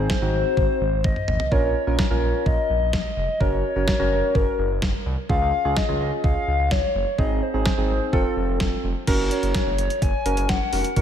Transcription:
0.00 0.13 C4 medium
0.00 0.13 D#4 medium
0.00 0.13 G#4 medium
0.00 1.06 C5 loud
0.10 kick loud
0.10 snare loud
0.22 0.32 G#1 loud
0.22 0.83 C4 medium
0.22 0.83 D#4 medium
0.22 0.83 F#4 medium
0.33 0.44 G#1 loud
0.57 0.68 G#1 loud
0.57 kick loud
0.81 0.91 G#1 loud
0.93 1.03 G#1 medium
1.04 1.15 G#1 loud
1.04 1.53 D#5 loud
1.04 kick loud
1.04 high tom medium
1.16 mid tom medium
1.28 1.39 G#1 medium
1.28 mid tom medium
1.40 floor tom medium
1.52 1.62 A#1 loud
1.52 1.74 C#4 medium
1.52 1.74 F4 medium
1.52 1.74 A#4 medium
1.52 1.98 C#5 loud
1.52 kick loud
1.63 1.74 A#1 medium
1.87 1.98 A#1 loud
1.87 2.02 C#4 medium
1.87 2.02 F4 medium
1.87 2.02 A#4 medium
1.99 2.48 C#5 loud
1.99 kick loud
1.99 snare loud
2.11 2.21 A#1 loud
2.11 2.71 C#4 medium
2.11 2.71 F4 medium
2.11 2.71 A#4 medium
2.22 2.33 A#1 loud
2.46 2.57 A#1 loud
2.46 3.42 D#5 loud
2.46 kick loud
2.70 2.80 A#1 loud
2.82 2.92 A#1 medium
2.93 3.04 A#1 loud
2.93 kick loud
2.93 snare loud
3.17 3.27 F1 loud
3.40 3.51 F#1 loud
3.40 3.63 C#4 medium
3.40 3.63 F#4 medium
3.40 3.63 A#4 medium
3.40 4.37 C#5 loud
3.40 kick loud
3.52 3.63 F#1 medium
3.76 3.87 F#1 loud
3.76 3.91 C#4 medium
3.76 3.91 F#4 medium
3.76 3.91 A#4 medium
3.88 kick loud
3.88 snare loud
3.99 4.10 F#1 loud
3.99 4.60 C#4 medium
3.99 4.60 F#4 medium
3.99 4.60 A#4 medium
4.11 4.22 F#1 loud
4.35 4.46 F#1 loud
4.35 5.06 A#4 medium
4.35 kick loud
4.59 4.69 F#1 loud
4.70 4.81 F#1 medium
4.82 4.93 F#1 loud
4.82 kick loud
4.82 snare loud
5.06 5.16 C2 loud
5.29 5.40 C#2 loud
5.29 5.52 C#4 medium
5.29 5.52 F4 medium
5.29 5.52 G#4 medium
5.29 5.78 F5 loud
5.29 kick loud
5.41 5.52 C#2 loud
5.65 5.76 C#2 loud
5.65 5.80 C#4 medium
5.65 5.80 F4 medium
5.65 5.80 G#4 medium
5.77 6.00 D#5 loud
5.77 kick loud
5.77 snare loud
5.88 5.99 C#2 loud
5.88 6.49 C#4 medium
5.88 6.49 F4 medium
5.88 6.49 G#4 medium
6.00 6.11 C#2 loud
6.00 6.11 D#5 loud
6.24 6.35 C#2 loud
6.24 6.73 F5 loud
6.24 kick loud
6.48 6.58 C#2 loud
6.59 6.70 C#2 loud
6.71 6.82 C#2 loud
6.71 7.20 C#5 loud
6.71 kick loud
6.71 snare loud
6.95 7.05 F#1 loud
7.18 7.29 G#1 loud
7.18 7.41 C4 medium
7.18 7.41 D#4 medium
7.18 7.41 G#4 medium
7.18 7.44 D#5 loud
7.18 kick loud
7.30 7.41 G#1 loud
7.42 8.84 C5 loud
7.54 7.64 G#1 medium
7.54 7.69 C4 medium
7.54 7.69 D#4 medium
7.54 7.69 G#4 medium
7.66 kick loud
7.66 snare loud
7.78 7.88 G#1 medium
7.78 8.12 C4 medium
7.78 8.13 D#4 medium
7.78 8.13 G#4 medium
7.89 8.00 G#1 loud
8.13 8.24 F1 loud
8.13 8.89 C4 medium
8.13 8.89 F4 medium
8.13 8.89 A4 medium
8.13 kick loud
8.37 8.47 F1 medium
8.48 8.59 F1 loud
8.60 8.71 F1 loud
8.60 kick loud
8.60 snare loud
8.84 8.94 F1 medium
9.07 9.18 F#1 loud
9.07 9.68 C#4 medium
9.07 9.68 F#4 medium
9.07 9.68 A#4 medium
9.07 kick loud
9.07 closed hi-hat medium
9.07 crash medium
9.19 9.30 F#1 loud
9.31 10.03 C#5 loud
9.31 closed hi-hat medium
9.43 9.54 F#1 medium
9.43 closed hi-hat soft
9.55 kick loud
9.55 snare loud
9.55 closed hi-hat medium
9.67 9.77 F#1 medium
9.78 9.89 F#1 loud
9.78 closed hi-hat medium
9.90 closed hi-hat soft
10.02 10.13 F#1 loud
10.02 10.51 G#5 loud
10.02 kick loud
10.02 closed hi-hat medium
10.26 10.36 F#1 medium
10.26 10.56 C#4 medium
10.26 10.56 F#4 medium
10.26 10.56 A#4 medium
10.26 closed hi-hat medium
10.37 10.48 F#1 loud
10.37 closed hi-hat medium
10.49 10.60 F#1 loud
10.49 10.96 F#5 loud
10.49 kick loud
10.49 snare loud
10.49 closed hi-hat medium
10.73 10.83 F1 loud
10.73 10.88 C#4 medium
10.73 10.88 F#4 medium
10.73 10.88 A#4 medium
10.73 open hi-hat medium
10.84 closed hi-hat medium
10.96 11.02 F#1 loud
10.96 11.02 C#4 medium
10.96 11.02 F#4 medium
10.96 11.02 A#4 medium
10.96 11.02 F#5 loud
10.96 kick loud
10.96 closed hi-hat medium

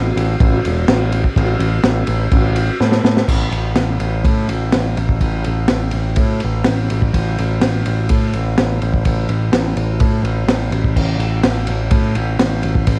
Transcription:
0.00 0.11 A1 medium
0.16 0.35 A1 medium
0.16 ride medium
0.40 0.59 A1 loud
0.40 kick loud
0.40 ride loud
0.65 0.84 E1 medium
0.65 ride medium
0.88 1.25 A1 medium
0.88 snare loud
0.88 ride loud
1.12 ride medium
1.24 kick medium
1.36 1.55 A1 loud
1.36 kick loud
1.36 ride loud
1.59 1.78 A1 medium
1.59 ride medium
1.83 2.02 A1 medium
1.83 snare loud
1.83 ride medium
2.07 2.26 A1 medium
2.07 ride medium
2.31 2.69 A1 medium
2.31 kick loud
2.31 ride loud
2.56 ride medium
2.80 2.99 A2 medium
2.80 snare medium
2.92 snare medium
3.04 3.23 A2 medium
3.04 snare loud
3.17 snare loud
3.28 3.51 A1 medium
3.28 kick loud
3.28 crash loud
3.51 3.74 A1 medium
3.51 ride medium
3.76 3.99 A1 medium
3.76 snare loud
3.76 ride medium
4.00 4.23 A1 medium
4.00 ride medium
4.24 4.47 A2 medium
4.24 kick loud
4.24 ride medium
4.48 4.71 A1 medium
4.48 ride medium
4.72 4.96 A1 medium
4.72 snare loud
4.72 ride medium
4.97 5.19 A1 medium
4.97 ride medium
5.09 kick medium
5.21 5.43 A1 medium
5.21 kick medium
5.21 ride medium
5.44 5.68 A1 medium
5.44 ride medium
5.68 5.92 A1 medium
5.68 snare loud
5.68 ride medium
5.91 6.16 A1 medium
5.91 ride medium
6.16 6.40 A2 medium
6.16 kick loud
6.16 ride medium
6.40 ride medium
6.44 6.65 A1 medium
6.64 6.89 A1 medium
6.64 snare loud
6.64 ride loud
6.90 7.13 A1 medium
6.90 ride medium
7.02 kick medium
7.13 7.36 A1 medium
7.13 kick medium
7.13 ride loud
7.38 7.61 A1 medium
7.38 ride medium
7.61 7.84 A1 medium
7.61 snare loud
7.61 ride loud
7.86 8.08 A1 medium
7.86 ride medium
8.09 8.32 A2 medium
8.09 kick loud
8.09 ride loud
8.33 8.56 A1 medium
8.33 ride medium
8.58 8.80 A1 medium
8.58 snare loud
8.58 ride medium
8.82 9.04 A1 medium
8.82 ride medium
8.94 kick medium
9.05 9.28 A1 medium
9.05 kick medium
9.05 ride medium
9.29 9.51 A1 medium
9.29 ride medium
9.52 9.75 A1 medium
9.52 snare loud
9.52 ride medium
9.76 9.99 A1 medium
9.76 ride medium
10.00 10.22 A2 medium
10.00 kick loud
10.00 ride medium
10.23 10.46 A1 medium
10.23 ride medium
10.46 10.70 A1 medium
10.46 snare loud
10.46 ride medium
10.71 10.95 A1 medium
10.71 ride medium
10.84 kick medium
10.96 11.18 A1 medium
10.96 kick loud
10.96 crash loud
11.18 11.42 A1 medium
11.18 ride medium
11.44 11.67 A1 medium
11.44 snare loud
11.44 ride medium
11.67 11.91 A1 medium
11.67 ride medium
11.91 12.14 A2 medium
11.91 kick loud
11.91 ride loud
12.15 12.38 A1 medium
12.15 ride medium
12.39 12.62 A1 medium
12.39 snare loud
12.39 ride medium
12.63 12.86 A1 medium
12.63 ride medium
12.75 kick medium
12.87 12.99 A1 loud
12.87 kick loud
12.87 ride loud

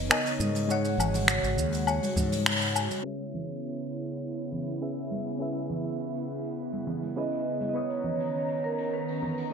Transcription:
0.00 3.01 C#3 medium
0.00 0.09 B3 medium
0.00 0.67 D#4 medium
0.00 0.71 B4 medium
0.00 0.10 C#5 medium
0.00 0.11 D#5 medium
0.00 0.11 D#5 loud
0.09 0.65 B3 medium
0.09 0.66 A#4 medium
0.09 0.66 C#5 medium
0.09 0.66 D#5 medium
0.09 0.72 D#5 loud
0.09 finger snap loud
0.09 low woodblock medium
0.09 shaker medium
0.25 open hi-hat medium
0.25 shaker soft
0.40 0.95 G#2 medium
0.40 high conga medium
0.40 shaker medium
0.55 open hi-hat medium
0.55 shaker soft
0.67 2.41 G#3 medium
0.67 3.02 G#3 medium
0.67 3.02 F#4 medium
0.67 2.42 G#4 medium
0.67 2.43 C#5 medium
0.67 2.43 F#5 medium
0.67 shaker medium
0.72 1.87 C#5 loud
0.84 open hi-hat soft
0.84 shaker soft
0.98 1.39 G#1 medium
0.98 low conga medium
0.98 low woodblock medium
0.98 shaker medium
1.14 open hi-hat medium
1.14 high conga medium
1.14 shaker medium
1.28 finger snap loud
1.28 shaker medium
1.43 1.55 G#1 medium
1.43 open hi-hat soft
1.43 shaker soft
1.57 1.98 D#2 medium
1.57 kick medium
1.57 shaker medium
1.72 open hi-hat medium
1.72 shaker soft
1.87 2.72 C#5 medium
1.87 low woodblock medium
1.87 shaker medium
2.03 open hi-hat medium
2.03 high conga medium
2.03 shaker soft
2.16 2.87 G#2 loud
2.16 kick loud
2.16 low conga medium
2.16 shaker medium
2.32 open hi-hat medium
2.32 high conga medium
2.32 shaker soft
2.46 finger snap loud
2.46 shaker medium
2.61 open hi-hat medium
2.61 shaker soft
2.76 low woodblock medium
2.76 shaker medium
2.91 open hi-hat medium
2.91 high conga medium
2.91 shaker medium
3.03 7.72 C#3 medium
3.03 9.53 B3 medium
3.03 4.77 C#4 medium
3.03 7.72 E4 medium
3.03 4.77 G#4 medium
3.03 4.78 B4 medium
3.03 5.07 C#5 medium
3.03 4.79 E5 medium
3.34 low conga medium
3.49 open hi-hat medium
3.78 open hi-hat soft
4.08 open hi-hat medium
4.38 open hi-hat medium
4.52 low conga medium
4.68 open hi-hat medium
4.81 5.36 C#4 medium
4.81 5.37 G#4 medium
4.81 5.37 B4 medium
4.81 5.37 E5 medium
4.97 open hi-hat soft
5.11 high conga medium
5.27 open hi-hat medium
5.38 7.12 C#4 medium
5.38 7.13 G#4 medium
5.38 7.14 B4 medium
5.38 7.14 E5 medium
5.56 open hi-hat soft
5.70 low conga medium
5.85 open hi-hat medium
6.15 open hi-hat soft
6.43 open hi-hat medium
6.72 open hi-hat medium
6.72 high conga medium
6.87 low conga medium
7.02 open hi-hat medium
7.02 high conga medium
7.16 7.72 C#4 medium
7.16 7.73 E4 medium
7.16 7.72 G#4 medium
7.16 7.72 B4 medium
7.16 7.68 D#5 medium
7.31 open hi-hat medium
7.61 open hi-hat medium
7.61 high conga medium
7.69 7.76 D#5 medium
7.73 9.53 D#3 medium
7.73 9.47 B3 medium
7.73 9.53 C#4 medium
7.73 9.48 B4 medium
7.73 9.48 C#5 medium
7.73 8.66 C#5 loud
7.73 9.49 D#5 medium
7.73 9.53 A#5 medium
7.90 open hi-hat soft
8.04 low conga medium
8.20 open hi-hat medium
8.48 open hi-hat soft
8.64 8.94 A#4 medium
8.78 open hi-hat medium
8.94 9.53 B4 medium
9.08 open hi-hat medium
9.22 low conga medium
9.37 open hi-hat medium

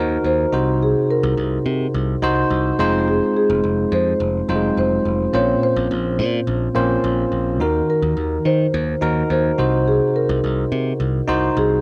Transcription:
0.00 0.17 D#2 loud
0.00 0.55 D#3 medium
0.00 0.52 D#4 medium
0.00 0.53 F#4 medium
0.00 0.55 A#4 medium
0.00 0.25 C5 loud
0.24 0.45 D#2 loud
0.24 0.78 C5 loud
0.52 0.93 C2 medium
0.52 1.34 C3 medium
0.52 1.44 D#4 medium
0.52 1.45 F#4 medium
0.52 1.45 C5 medium
0.83 0.95 G#4 medium
1.11 2.76 A#4 medium
1.23 1.34 C2 loud
1.37 1.58 C2 loud
1.66 1.86 C3 medium
1.94 2.15 C2 loud
2.22 2.43 C2 loud
2.22 2.78 D#4 medium
2.22 2.80 F#4 medium
2.22 2.79 C5 loud
2.50 2.71 C2 loud
2.79 3.20 F1 medium
2.79 3.71 G#3 loud
2.79 3.71 C4 medium
2.79 3.71 D#4 medium
2.79 3.71 F4 medium
2.79 3.71 C5 loud
3.08 3.21 G#4 medium
3.37 3.95 G#4 medium
3.50 3.60 F1 loud
3.64 3.84 F1 loud
3.92 4.13 F2 loud
3.92 4.77 C5 loud
4.20 4.41 F1 loud
4.48 4.69 F1 loud
4.48 4.55 F#3 medium
4.48 5.18 C4 medium
4.48 5.18 D#4 medium
4.48 5.18 F4 medium
4.48 5.18 C5 medium
4.55 5.21 G#3 medium
4.77 4.98 F1 loud
4.77 5.36 C5 medium
5.05 5.26 F1 medium
5.33 5.54 A#1 loud
5.33 6.15 A#2 medium
5.33 6.25 A#3 medium
5.33 6.25 C4 medium
5.33 6.25 C#4 medium
5.33 6.26 F4 medium
5.33 6.26 C5 medium
5.33 5.64 C#5 loud
5.63 7.29 C5 loud
5.76 5.87 A#1 loud
5.91 6.20 A#1 loud
6.19 6.39 A#2 loud
6.47 6.68 A#1 loud
6.75 6.96 A#1 medium
6.75 7.44 A#3 medium
6.75 7.44 C4 medium
6.75 7.44 C#4 medium
6.75 7.44 F4 medium
6.75 7.44 C5 loud
7.04 7.24 A#1 loud
7.32 7.60 A#1 medium
7.60 7.81 D#2 loud
7.60 8.42 D#3 medium
7.60 8.52 D#4 medium
7.60 8.52 F#4 medium
7.60 8.52 A#4 medium
7.60 7.87 A#4 loud
7.90 8.48 A#4 loud
8.02 8.13 D#2 medium
8.17 8.37 D#2 medium
8.45 8.66 D#3 medium
8.45 9.30 C5 loud
8.74 8.94 D#2 loud
9.01 9.22 D#2 loud
9.01 9.57 D#4 medium
9.01 9.57 F#4 medium
9.01 9.59 A#4 medium
9.30 9.51 D#2 loud
9.30 9.89 C5 medium
9.58 9.99 C2 medium
9.58 10.40 C3 medium
9.58 10.50 D#4 medium
9.58 10.50 F#4 medium
9.58 10.51 C5 medium
9.88 10.17 G#4 medium
10.16 11.61 A#4 loud
10.29 10.40 C2 medium
10.44 10.64 C2 loud
10.72 10.92 C3 loud
11.00 11.20 C2 loud
11.28 11.49 C2 loud
11.28 11.81 D#4 loud
11.28 11.81 F#4 medium
11.28 11.81 C5 loud
11.57 11.77 C2 loud
11.57 11.81 G#4 medium

